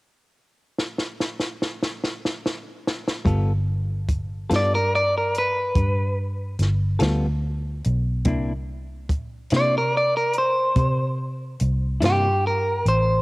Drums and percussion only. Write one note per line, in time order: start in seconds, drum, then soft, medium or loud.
0.78 snare medium
0.98 snare medium
1.20 snare medium
1.40 snare medium
1.62 snare medium
1.83 snare medium
2.04 snare medium
2.25 snare medium
2.46 snare medium
2.88 snare medium
3.08 snare medium
3.26 kick medium
3.26 closed hi-hat medium
4.08 kick medium
4.08 closed hi-hat medium
4.51 snare medium
4.51 closed hi-hat medium
5.35 closed hi-hat medium
5.75 kick medium
5.75 closed hi-hat medium
6.59 snare soft
6.59 closed hi-hat soft
7.00 snare medium
7.00 closed hi-hat medium
7.84 closed hi-hat medium
8.25 kick medium
8.25 closed hi-hat medium
9.09 kick medium
9.09 closed hi-hat medium
9.50 snare medium
9.50 closed hi-hat medium
10.33 closed hi-hat medium
10.76 kick medium
10.76 closed hi-hat medium
11.60 closed hi-hat medium
12.02 snare medium
12.02 closed hi-hat medium
12.86 closed hi-hat medium